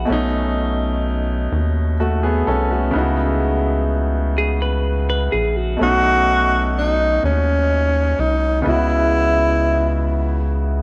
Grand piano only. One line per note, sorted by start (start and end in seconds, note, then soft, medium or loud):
0.05 2.88 B2 medium
0.05 1.95 A3 medium
0.10 1.96 C#4 medium
0.10 1.97 D#4 medium
2.00 2.22 A3 soft
2.00 2.22 F#4 medium
2.23 2.46 B3 soft
2.23 2.46 G#4 medium
2.47 2.70 C#4 medium
2.47 2.69 A4 medium
2.71 3.16 A3 soft
2.71 2.97 F#4 soft
2.91 5.74 C#3 medium
2.91 5.75 B3 medium
2.91 5.76 D#4 medium
2.96 5.77 E4 medium
2.96 5.78 F#4 medium
5.77 8.60 B2 medium
5.77 8.61 A3 medium
5.81 8.62 C#4 soft
5.81 8.64 D#4 medium
8.62 10.82 C#3 medium
8.62 10.82 B3 soft
8.62 10.82 D#5 soft
8.68 10.82 E4 medium
8.68 10.82 F#4 medium